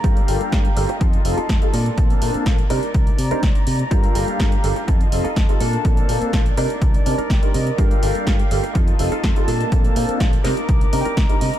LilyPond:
<<
  \new Staff \with { instrumentName = "Violin section" } { \time 4/4 \key c \dorian \tempo 4 = 124 << { bes''2 a''4. a''8~ | a''4. bes''2~ bes''8~ | bes''2 a''2~ | a''4. bes'2~ bes'8~ |
bes'2 a''2~ | a''4. bes''2~ bes''8 | } \\ { <g' f''>2 <f' ees''>4. <bes d'>8~ | <bes d'>4. d''2~ d''8 | <g' f''>2 <f' ees''>4. <bes d'>8~ | <bes d'>4. d''2~ d''8 |
<g' f''>2 <f' ees''>4. <bes d'>8~ | <bes d'>4. d'''2~ d'''8 | } >> }
  \new Staff \with { instrumentName = "Clean electric guitar" } { \time 4/4 \key c \dorian << { r1 | r1 | r1 | r2 r8 a''8 g''8 ees''8 |
r1 | r2 \tuplet 3/2 { r8. bes''16 g''8 } r8 ees''8 | } \\ { <f' g' bes'>8. r4 r16 <ees' f' a'>8 r16 <ees' f' a'>8. <bes d' a'>8~ | <bes d' a'>4 r8 <d' ees' bes'>4 r16 <d' ees' bes'>8. r8 | <f' g' bes'>8. r4 r16 <ees' f' a'>8 r16 <ees' f' a'>8. <bes d' a'>8~ | <bes d' a'>4 r8 <d' ees' bes'>4 r16 <d' ees' bes'>8. r8 |
<f' g' bes'>8. r4 r16 <ees' f' a'>8 r16 <ees' f' a'>8. <bes d' a'>8~ | <bes d' a'>4 r8 <d' ees' bes'>4 r16 <d' ees' bes'>8. r8 | } >> }
  \new Staff \with { instrumentName = "Grand piano" } { \time 4/4 \key c \dorian <g bes d' f' a'>8 <g bes d' f' a'>8 <g bes d' f' a'>16 r16 <g bes d' f' a'>16 r8. <g c' ees' f' a'>16 r8 <g c' ees' f' a'>16 r8 | <bes c' d' f' a'>8 <bes c' d' f' a'>8 <bes c' d' f'>16 r16 <g c' d' ees' bes'>16 r4 <g c' d' ees' c''>16 r4 | <g bes d' f' a'>8 <g bes d' f' a'>8 <g bes d' f' a'>16 r16 <g bes d' f' a'>16 r8. <g c' ees' f' a'>16 r8 <g c' ees' f' a'>16 r8 | <bes c' d' f' a'>8 <bes c' d' f' a'>8 <bes c' d' f' a'>16 r16 <g c' d' ees' bes'>16 r8. <g c' d' ees' bes'>16 r8 <g c' d' ees' bes'>16 r8 |
<g bes d' f' a'>8 <g bes d' f' a'>8 <g bes d' f' a'>16 r16 <g bes d' f' a'>16 r8. <g c' ees' f' a'>16 r8 <g c' ees' f' a'>16 r8 | <bes c' d' f' a'>8 <bes c' d' f' a'>8 <bes c' d' f' a'>16 r16 <g c' d' ees' bes'>16 r8. <g c' d' ees' bes'>16 r8 <g c' d' ees' bes'>16 r8 | }
  \new Staff \with { instrumentName = "Fingered electric bass" } { \clef bass \time 4/4 \key c \dorian g,8 g,,8 g,8 g,,8 f,8 f,,8 f,8 bes,8 | bes,,8 bes,8 bes,,8 c8 c,8 c8 c,8 c8 | g,8 g,,8 g,8 g,,8 f,8 f,,8 f,8 bes,8 | bes,,8 bes,8 bes,,8 c8 c,8 c8 c,8 c8 |
g,8 g,,8 g,8 g,,8 f,8 f,,8 f,8 bes,8 | bes,,8 bes,8 bes,,8 c8 c,8 c8 c,8 c8 | }
  \new DrumStaff \with { instrumentName = "Drums" } \drummode { \time 4/4 <hh bd>16 hh16 hho16 hh16 <hh bd sn>16 hh16 hho16 hh16 <hh bd>16 hh16 hho16 hh16 <hh bd sn>16 hh16 hho16 hh16 | <hh bd>16 hh16 hho16 hh16 <hh bd sn>16 hh16 hho16 hh16 <hh bd>16 hh16 hho16 hh16 <hh bd sn>16 hh16 hho16 hh16 | <hh bd>16 hh16 hho16 hh16 <hh bd sn>16 hh16 hho16 hh16 <hh bd>16 hh16 hho16 hh16 <hh bd sn>16 hh16 hho16 hh16 | <hh bd>16 hh16 hho16 hh16 <hh bd sn>16 hh16 hho16 hh16 <hh bd>16 hh16 hho16 hh16 <hh bd sn>16 hh16 hho16 hh16 |
<hh bd>16 hh16 hho16 hh16 <hh bd sn>16 hh16 hho16 hh16 <hh bd>16 hh16 hho16 hh16 <hh bd sn>16 hh16 hho16 hh16 | <hh bd>16 hh16 hho16 hh16 <hh bd sn>16 hh16 <hho sn>16 hh16 <hh bd>16 hh16 hho16 hh16 <hh bd sn>16 hh16 hho16 hh16 | }
>>